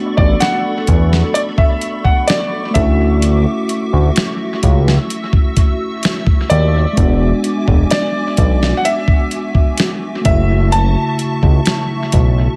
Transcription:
Already playing: A3 B3 D4 F#4 A4 D5 B5 C#6
0.17 A1 D5, kick
0.40 F#5, snare, closed hi-hat
0.87 E2, kick, closed hi-hat
1.13 snare
1.34 D5, closed hi-hat
1.58 E5, kick
1.81 closed hi-hat
2.04 F#5, kick
2.27 D5, snare, closed hi-hat
2.71 A3 C#4 E5
2.75 D2 E4 F#4 E5 D6, kick, closed hi-hat
2.81 F#4
3.22 closed hi-hat
3.69 closed hi-hat
3.93 D2
4.16 snare, closed hi-hat
4.63 C#2 E6, kick, closed hi-hat
4.88 snare
5.10 closed hi-hat
5.33 kick
5.57 kick, closed hi-hat
6.03 snare, closed hi-hat
6.27 kick
6.50 D#2 D5, closed hi-hat
6.93 G#3 B3
6.97 E1 D4 F#4 G#5 D6, kick, closed hi-hat
7.03 F#4
7.44 closed hi-hat
7.68 E1, kick
7.91 D5, snare, closed hi-hat
8.37 B1, kick, closed hi-hat
8.63 snare
8.77 F#5
8.85 E5, closed hi-hat
9.08 kick
9.31 closed hi-hat
9.55 kick
9.78 snare, closed hi-hat
10.21 C#3 A3 E5 C#6, closed hi-hat
10.25 F#1 E4 E5 A5, kick
10.31 F#4
10.72 A5, closed hi-hat
11.19 closed hi-hat
11.43 C#2, kick
11.66 snare, closed hi-hat
12.12 B1, kick, closed hi-hat

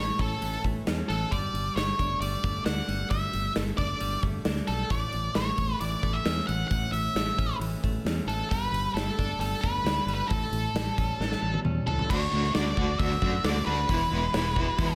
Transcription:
Already playing: A2 E3 A3 C#4 C#5
0.19 A1 C#4 A4, kick, open hi-hat
0.41 A1 E3, open hi-hat
0.64 A1 A3, kick, open hi-hat
0.87 E2 C#4, snare, open hi-hat
0.99 snare
1.09 A1 E3 A4, open hi-hat
1.31 G1 G3 D5, kick, open hi-hat
1.54 G1, open hi-hat
1.76 G1 A3 C#5, snare, open hi-hat
1.99 G1 D4, kick, open hi-hat
2.20 G1 G3 D5, open hi-hat
2.44 G1 A3, kick, open hi-hat
2.65 D2 D4 F#5, snare, open hi-hat
2.88 G1 G3, open hi-hat
3.10 G1 G3 E5, kick, open hi-hat
3.33 G1, open hi-hat
3.56 G1 A3, snare, open hi-hat
3.77 G1 D4 D5, kick, open hi-hat
4.00 G1 G3, open hi-hat
4.23 G1 A3, kick, open hi-hat
4.45 D2 D4, snare, open hi-hat
4.56 snare
4.68 B1 G3 A4, open hi-hat
4.90 A1 A2 D5, kick, open hi-hat
5.13 A1, open hi-hat
5.35 A1 A3 C#5, snare, open hi-hat
5.58 A1, kick, open hi-hat
5.80 A1 E3 D5, open hi-hat
6.03 A1 A3, kick, open hi-hat
6.13 E5
6.25 E2 C#4, snare, open hi-hat
6.38 snare
6.47 A1 E3 F#5, open hi-hat
6.68 A1 A2 F#5, kick, open hi-hat
6.92 A1 E5, open hi-hat
7.15 A1 A3, snare, open hi-hat
7.38 A1 C#4, kick, open hi-hat
7.59 A1 E3, open hi-hat
7.84 A1 A3, kick, open hi-hat
8.05 E2 C#4, snare, open hi-hat
8.26 A1 E3 A4, open hi-hat
8.49 G1 G3 B4, kick, open hi-hat
8.72 G1, open hi-hat
8.94 G1 A3 A4, snare, open hi-hat
9.19 G1 D4, kick, open hi-hat
9.39 G1 G3 A4, open hi-hat
9.61 G1 A3 B4, kick, open hi-hat
9.84 D2 D4, snare, open hi-hat
10.06 G1 G3, open hi-hat
10.15 B4
10.28 A1 A2 A4, kick, open hi-hat
10.52 A1, open hi-hat
10.74 A1 G3, snare, open hi-hat
10.98 A1 C#4, kick, open hi-hat
11.20 A1 E3, snare
11.32 snare
11.42 A1 G3
11.54 high tom
11.65 E2 C#4, mid tom
11.87 C#2 E3 A4, floor tom
11.99 floor tom
12.09 D2 D3 A3 D4 F#4 C#5, kick, crash
12.32 D2 D3 A3 D4 F#4
12.44 snare
12.54 D2 D3 A3 D4 F#4 D5, snare, open hi-hat
12.76 D2 D3 A3 D4 F#4, kick
12.98 D2 D3 A3 D4 F#4 E5, kick, open hi-hat
13.22 F#2 D3 A3 D4 F#4, kick
13.44 D2 D3 A3 D4 F#4 D5, snare, open hi-hat
13.66 D2 D3 A3 D4 F#4 B4
13.88 E1 E2 E3 G#3 B3 E4, kick, open hi-hat
14.11 E1 E3 G#3 B3 E4
14.34 E1 E3 G#3 B3 E4, snare, open hi-hat
14.55 E3 G#3 B3 E4 F#4, kick
14.78 E2 E3 G#3 B3 E4, kick, open hi-hat

